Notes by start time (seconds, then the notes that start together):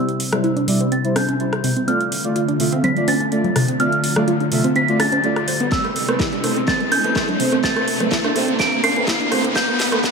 Already playing: C3 G3 E4 C5 E6, riser
0.09 closed hi-hat
0.20 open hi-hat
0.32 G3 E4 C5, cross-stick, closed hi-hat, low conga
0.44 E4, closed hi-hat
0.56 D4, closed hi-hat
0.68 C3 G3 E4 D5, open hi-hat
0.80 C4, closed hi-hat
0.92 C4 A6, closed hi-hat
1.04 G3 E4 C5, closed hi-hat
1.16 C4 G6, cross-stick, open hi-hat, high conga
1.28 closed hi-hat, high conga
1.40 G3 E4 C5, closed hi-hat
1.53 cross-stick, closed hi-hat
1.64 C3, open hi-hat
1.76 C4, closed hi-hat
1.88 D3 A3 C4 F4 A4 D5 F6, closed hi-hat
2.01 closed hi-hat
2.12 open hi-hat
2.25 A3 F4 D5, closed hi-hat
2.36 F4, closed hi-hat
2.48 D4, closed hi-hat
2.60 C3 A3 F4 E5, open hi-hat
2.72 C4, closed hi-hat
2.84 C4 B6, closed hi-hat, low conga
2.97 A3 F4 D5, closed hi-hat
3.08 C4 A6, open hi-hat, high conga
3.20 closed hi-hat, high conga
3.32 A3 F4 D5, closed hi-hat
3.44 closed hi-hat, low conga
3.56 C3, cross-stick, open hi-hat
3.68 C4, closed hi-hat
3.80 A3 C4 F4 D5 F6, closed hi-hat
3.92 closed hi-hat
4.04 open hi-hat
4.16 A3 F4 D5, cross-stick, low conga
4.28 F4, closed hi-hat
4.40 D4, closed hi-hat
4.52 C3 A3 F4 E5, open hi-hat
4.64 C4, closed hi-hat
4.76 C4 B6, closed hi-hat
4.88 A3 F4 D5, closed hi-hat
5.00 E4 A6, cross-stick, open hi-hat, high conga
5.12 C5, closed hi-hat, high conga
5.24 A3 F4 D5, closed hi-hat
5.36 cross-stick, closed hi-hat
5.48 C5, open hi-hat
5.60 B3, closed hi-hat
5.72 C3 A3 B3 C4 E4 B4 E6, kick, snare, closed hi-hat
5.85 cross-stick, closed hi-hat
5.96 open hi-hat
6.08 A3 C4 B4, cross-stick, closed hi-hat
6.20 E4, kick, snare, closed hi-hat
6.32 D4, closed hi-hat
6.44 C3 A3 C4 C5, cross-stick, open hi-hat
6.56 C4, closed hi-hat
6.68 A3 C4 B4 A6, kick, cross-stick, snare, closed hi-hat, low conga
6.80 closed hi-hat
6.92 G6, cross-stick, open hi-hat, high conga
7.04 A3 C4 B4, closed hi-hat, high conga
7.16 E4, kick, cross-stick, snare, closed hi-hat
7.28 D4, closed hi-hat, low conga
7.40 C3 A3 C4 C5, open hi-hat
7.52 C4, cross-stick, closed hi-hat
7.64 C4 D4 B4 A6, kick, snare, closed hi-hat
7.76 cross-stick, closed hi-hat
7.88 open hi-hat
8.00 A3 C4 B4, cross-stick, closed hi-hat, low conga
8.12 E4, kick, snare, closed hi-hat
8.24 D4, cross-stick, closed hi-hat
8.36 C3 A3 C4 C5, open hi-hat
8.48 C4, closed hi-hat
8.60 A3 C4 B4 D7, kick, cross-stick, snare, closed hi-hat
8.72 closed hi-hat
8.84 C7, cross-stick, open hi-hat, high conga
8.96 A3 C4 B4, closed hi-hat, high conga
9.07 E4, kick, cross-stick, snare, closed hi-hat
9.20 D4, closed hi-hat
9.32 C3 A3 C4 C5, cross-stick, open hi-hat
9.44 C4, closed hi-hat
9.56 D3 A3 B3 G4 B4 G6, kick, snare, closed hi-hat
9.68 cross-stick, closed hi-hat
9.80 snare, open hi-hat
9.92 A3 B3 B4, cross-stick, closed hi-hat
10.04 A3 B3 B4, kick, snare, closed hi-hat